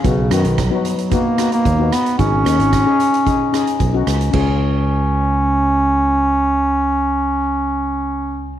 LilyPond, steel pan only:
\new Staff \with { instrumentName = "Steel pan" } { \time 4/4 \key des \mixolydian \tempo 4 = 112 <ces' ees' ges'>16 r16 <ces' ees' ges'>8 r16 <ces' ees' ges'>8 r16 <ces' ees' ges'>16 r16 <ces' ees' ges'>8 r16 <ces' ees' ges'>8 r16 | <des' ees' aes'>16 r16 <des' ees' aes'>8 r16 <des' ees' aes'>8 r16 <des' ees' aes'>16 r16 <des' ees' aes'>8 r16 <des' ees' ges'>8 r16 | <des' f' aes'>1~ | <des' f' aes'>1 | }